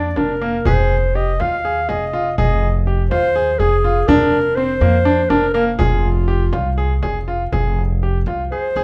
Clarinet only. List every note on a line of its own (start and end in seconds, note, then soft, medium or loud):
0.00 0.19 D5 medium
0.17 0.67 A#4 medium
0.67 1.17 C5 medium
1.16 1.42 D#5 medium
1.41 1.91 F5 medium
1.89 2.37 D#5 medium
2.38 2.81 D#5 medium
3.10 3.61 C5 loud
3.59 4.09 G#4 medium
4.08 4.57 A#4 loud
4.56 5.31 C5 loud
5.30 5.53 A#4 medium
5.54 5.65 A#4 medium
5.78 6.98 F4 medium
8.51 8.84 C5 medium